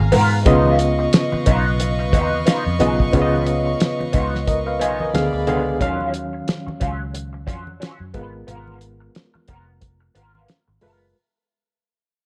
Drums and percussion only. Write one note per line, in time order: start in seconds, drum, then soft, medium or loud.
0.12 open hi-hat medium
0.12 muted conga soft
0.12 high conga medium
0.12 low conga medium
0.46 kick loud
0.46 closed hi-hat loud
0.46 low conga medium
0.65 high conga medium
0.79 closed hi-hat medium
1.13 snare loud
1.13 closed hi-hat medium
1.32 high conga medium
1.46 kick medium
1.46 closed hi-hat medium
1.46 muted conga soft
1.80 closed hi-hat medium
1.80 muted conga soft
2.13 kick medium
2.13 closed hi-hat medium
2.33 high conga medium
2.47 snare loud
2.47 closed hi-hat medium
2.80 closed hi-hat medium
2.80 muted conga soft
2.80 high conga medium
2.80 low conga medium
3.00 kick medium
3.13 kick loud
3.13 closed hi-hat loud
3.13 low conga medium
3.34 high conga medium
3.46 closed hi-hat medium
3.80 snare loud
3.80 closed hi-hat medium
3.80 muted conga soft
4.01 high conga medium
4.13 kick medium
4.13 closed hi-hat medium
4.35 snare soft
4.48 kick medium
4.48 closed hi-hat medium
4.48 muted conga soft
4.81 closed hi-hat medium
5.00 high conga medium
5.14 snare medium
5.14 closed hi-hat medium
5.14 muted conga soft
5.47 closed hi-hat medium
5.47 muted conga soft
5.47 high conga medium
5.47 low conga medium
5.81 kick loud
5.81 closed hi-hat medium
5.81 muted conga soft
5.81 low conga medium
6.01 high conga medium
6.14 closed hi-hat medium
6.48 snare loud
6.48 closed hi-hat medium
6.48 muted conga soft
6.68 high conga medium
6.81 kick medium
6.81 closed hi-hat medium
7.15 closed hi-hat medium
7.48 kick loud
7.48 closed hi-hat medium
7.48 muted conga soft
7.67 high conga medium
7.82 snare loud
7.82 closed hi-hat medium
7.82 muted conga soft
8.14 kick loud
8.14 closed hi-hat medium
8.14 high conga medium
8.14 low conga medium
8.48 closed hi-hat medium
8.48 low conga medium
8.67 high conga medium
8.81 closed hi-hat medium
8.81 muted conga soft
9.15 snare loud
9.15 closed hi-hat medium
9.35 high conga medium
9.48 kick medium
9.48 closed hi-hat medium
9.82 kick medium
9.82 closed hi-hat medium
9.82 muted conga soft
10.15 closed hi-hat medium
10.15 muted conga soft
10.35 high conga medium
10.48 snare loud
10.48 closed hi-hat medium
10.48 muted conga soft
10.81 open hi-hat medium
10.81 high conga medium
10.81 low conga medium